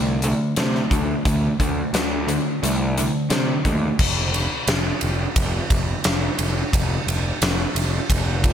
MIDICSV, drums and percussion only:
0, 0, Header, 1, 2, 480
1, 0, Start_track
1, 0, Tempo, 684151
1, 880, Time_signature, 4, 2, 24, 8
1, 5985, End_track
2, 0, Start_track
2, 0, Title_t, "Drums"
2, 156, Note_on_c, 9, 42, 56
2, 226, Note_off_c, 9, 42, 0
2, 396, Note_on_c, 9, 42, 84
2, 403, Note_on_c, 9, 38, 108
2, 466, Note_off_c, 9, 42, 0
2, 473, Note_off_c, 9, 38, 0
2, 525, Note_on_c, 9, 38, 32
2, 596, Note_off_c, 9, 38, 0
2, 639, Note_on_c, 9, 36, 80
2, 644, Note_on_c, 9, 42, 59
2, 709, Note_off_c, 9, 36, 0
2, 714, Note_off_c, 9, 42, 0
2, 880, Note_on_c, 9, 36, 94
2, 882, Note_on_c, 9, 42, 76
2, 950, Note_off_c, 9, 36, 0
2, 952, Note_off_c, 9, 42, 0
2, 1121, Note_on_c, 9, 36, 75
2, 1125, Note_on_c, 9, 42, 61
2, 1191, Note_off_c, 9, 36, 0
2, 1195, Note_off_c, 9, 42, 0
2, 1360, Note_on_c, 9, 42, 76
2, 1367, Note_on_c, 9, 38, 93
2, 1430, Note_off_c, 9, 42, 0
2, 1437, Note_off_c, 9, 38, 0
2, 1603, Note_on_c, 9, 42, 62
2, 1673, Note_off_c, 9, 42, 0
2, 1849, Note_on_c, 9, 42, 78
2, 1919, Note_off_c, 9, 42, 0
2, 2087, Note_on_c, 9, 42, 58
2, 2158, Note_off_c, 9, 42, 0
2, 2317, Note_on_c, 9, 42, 81
2, 2324, Note_on_c, 9, 38, 98
2, 2388, Note_off_c, 9, 42, 0
2, 2395, Note_off_c, 9, 38, 0
2, 2561, Note_on_c, 9, 36, 75
2, 2561, Note_on_c, 9, 42, 56
2, 2631, Note_off_c, 9, 36, 0
2, 2631, Note_off_c, 9, 42, 0
2, 2799, Note_on_c, 9, 49, 106
2, 2801, Note_on_c, 9, 36, 106
2, 2869, Note_off_c, 9, 49, 0
2, 2871, Note_off_c, 9, 36, 0
2, 3046, Note_on_c, 9, 51, 61
2, 3116, Note_off_c, 9, 51, 0
2, 3280, Note_on_c, 9, 51, 82
2, 3287, Note_on_c, 9, 38, 97
2, 3350, Note_off_c, 9, 51, 0
2, 3357, Note_off_c, 9, 38, 0
2, 3515, Note_on_c, 9, 51, 61
2, 3585, Note_off_c, 9, 51, 0
2, 3761, Note_on_c, 9, 36, 82
2, 3761, Note_on_c, 9, 51, 86
2, 3831, Note_off_c, 9, 36, 0
2, 3831, Note_off_c, 9, 51, 0
2, 4002, Note_on_c, 9, 36, 85
2, 4002, Note_on_c, 9, 51, 71
2, 4072, Note_off_c, 9, 36, 0
2, 4072, Note_off_c, 9, 51, 0
2, 4238, Note_on_c, 9, 51, 96
2, 4245, Note_on_c, 9, 38, 110
2, 4309, Note_off_c, 9, 51, 0
2, 4316, Note_off_c, 9, 38, 0
2, 4480, Note_on_c, 9, 51, 70
2, 4551, Note_off_c, 9, 51, 0
2, 4725, Note_on_c, 9, 36, 101
2, 4728, Note_on_c, 9, 51, 93
2, 4795, Note_off_c, 9, 36, 0
2, 4798, Note_off_c, 9, 51, 0
2, 4970, Note_on_c, 9, 51, 69
2, 5040, Note_off_c, 9, 51, 0
2, 5204, Note_on_c, 9, 51, 93
2, 5211, Note_on_c, 9, 38, 98
2, 5274, Note_off_c, 9, 51, 0
2, 5281, Note_off_c, 9, 38, 0
2, 5445, Note_on_c, 9, 51, 70
2, 5515, Note_off_c, 9, 51, 0
2, 5680, Note_on_c, 9, 36, 86
2, 5683, Note_on_c, 9, 51, 95
2, 5751, Note_off_c, 9, 36, 0
2, 5754, Note_off_c, 9, 51, 0
2, 5921, Note_on_c, 9, 36, 87
2, 5921, Note_on_c, 9, 51, 72
2, 5985, Note_off_c, 9, 36, 0
2, 5985, Note_off_c, 9, 51, 0
2, 5985, End_track
0, 0, End_of_file